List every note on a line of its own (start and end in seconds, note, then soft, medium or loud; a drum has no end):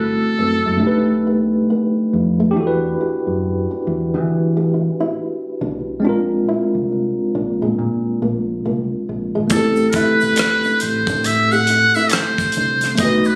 0.00 0.16 G1 medium
0.00 0.76 A3 medium
0.00 0.77 C4 medium
0.00 0.78 E4 medium
0.00 0.80 F#4 medium
0.00 0.81 A4 medium
0.00 1.25 A4 medium
0.39 0.62 F#1 medium
0.39 0.57 C4 medium
0.65 0.80 F#2 medium
0.65 0.77 A3 medium
0.77 2.50 A3 medium
0.77 2.51 D4 medium
0.82 1.58 B1 medium
0.82 2.52 D#4 medium
0.82 2.50 G4 medium
0.87 2.55 B4 medium
1.27 1.44 B3 medium
1.70 1.88 B3 medium
2.13 2.51 F2 medium
2.13 muted nylon-string guitar stroke soft
2.40 2.51 A3 medium
2.51 5.98 D4 medium
2.51 5.97 G4 medium
2.56 2.94 E2 loud
2.56 5.99 E4 medium
2.56 6.00 F#4 medium
2.60 2.66 A4 medium
2.67 6.05 B4 medium
3.01 3.18 G4 medium
3.27 3.64 F#2 medium
3.71 3.82 D4 medium
3.87 4.15 E2 medium
3.87 muted nylon-string guitar stroke soft
4.14 4.89 E3 medium
4.14 4.25 D4 medium
4.57 4.68 G4 medium
4.74 muted nylon-string guitar stroke soft
5.00 5.11 E4 medium
5.61 6.04 B1 medium
5.61 5.79 D4 medium
6.00 9.45 G#3 medium
6.00 9.46 C4 medium
6.04 6.42 A#1 loud
6.04 9.48 D4 medium
6.04 6.22 D4 medium
6.04 9.49 F4 medium
6.09 9.50 A#4 medium
6.49 6.66 E4 medium
6.75 7.12 C2 medium
6.92 muted nylon-string guitar stroke soft
7.35 7.57 A#1 medium
7.35 7.53 D4 medium
7.62 7.76 A#2 medium
7.62 7.73 G#3 medium
7.79 8.23 A#2 medium
8.22 8.59 A#1 medium
8.22 8.40 A#3 medium
8.65 8.88 C2 medium
8.65 8.83 A#3 medium
9.09 9.32 A#1 medium
9.09 muted nylon-string guitar stroke soft
9.35 9.51 G#1 medium
9.35 9.46 G#3 medium
9.48 9.89 A1 loud
9.48 12.93 A3 medium
9.48 9.58 B3 soft
9.48 kick medium
9.48 closed hi-hat medium
9.48 shaker medium
9.52 12.95 E4 medium
9.52 12.97 G4 medium
9.52 9.87 A4 medium
9.56 12.97 C4 medium
9.56 12.98 A4 medium
9.76 shaker soft
9.90 9.97 A#4 medium
9.90 closed hi-hat medium
9.94 10.14 E4 medium
9.94 10.83 B4 medium
9.94 kick medium
9.94 shaker soft
10.21 10.60 B1 medium
10.21 shaker soft
10.36 finger snap medium
10.36 cross-stick loud
10.36 closed hi-hat medium
10.36 shaker medium
10.64 10.77 D4 medium
10.64 shaker soft
10.80 11.05 A1 medium
10.80 11.27 C5 medium
10.80 muted nylon-string guitar stroke soft
10.80 closed hi-hat medium
10.80 shaker soft
11.07 11.84 A2 medium
11.07 11.20 D4 medium
11.07 kick loud
11.07 shaker soft
11.24 11.54 E5 medium
11.24 closed hi-hat medium
11.24 shaker medium
11.52 11.64 G4 medium
11.52 11.97 F#5 loud
11.52 shaker soft
11.67 muted nylon-string guitar stroke soft
11.67 closed hi-hat medium
11.95 12.07 E4 medium
11.95 12.14 E5 medium
11.95 shaker soft
12.10 12.99 C5 medium
12.10 finger snap medium
12.10 cross-stick medium
12.10 closed hi-hat medium
12.10 shaker medium
12.38 kick medium
12.38 shaker soft
12.52 closed hi-hat soft
12.52 shaker soft
12.57 12.94 C2 medium
12.57 12.75 D4 medium
12.81 cross-stick soft
12.81 closed hi-hat soft
12.81 shaker soft
12.95 13.35 A3 medium
12.95 13.35 B3 medium
12.95 kick medium
12.95 closed hi-hat medium
12.95 shaker medium
12.99 13.35 B1 loud
12.99 13.35 D#4 medium
12.99 13.18 D#4 medium
12.99 13.35 F#4 medium
12.99 13.28 D#5 medium
13.05 13.35 B4 medium
13.24 13.35 B4 medium
13.24 shaker soft